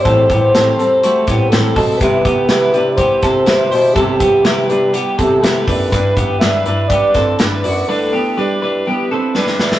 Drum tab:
HH |x-x-x-x-x-x-x-o-|x-x-x-x-x-x-x-o-|x-x-x-x-x-x-x-o-|x-x-x-x-x-x-x-o-|
SD |----o-----o-o---|----o-----o-o---|----o-------o---|----o-----o-o---|
BD |o-o-------o---o-|o-o-----o-o-----|o-o-------o---o-|o-o-----o-o-----|

HH |----------------|
SD |------------oooo|
BD |----------------|